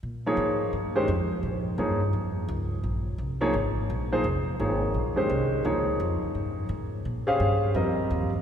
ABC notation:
X:1
M:4/4
L:1/8
Q:"Swing" 1/4=171
K:Bbdor
V:1 name="Grand piano"
z [F,B,EAd]3 z [E,A,DGc] z2 | z2 [F,B,EAd] z4 z | z3 [F,B,EAd] z3 [F,B,EAc] | z2 [F,B,EAd]3 [E,A,DGc]3 |
[F,B,EAd]4- [F,B,EAd] z3 | z [DGAcf]3 [G,CFBe]3 z |]
V:2 name="Upright bass" clef=bass
B,,2 A,,2 G,,2 F,,2 | B,,2 G,,2 F,,2 D,,2 | B,,,2 C,,2 A,,,2 B,,,2 | F,,,2 A,,,2 B,,, z C,,2 |
D,,2 F,, z G,,2 A,,2 | B,,2 G,,2 F,,2 E,,2 |]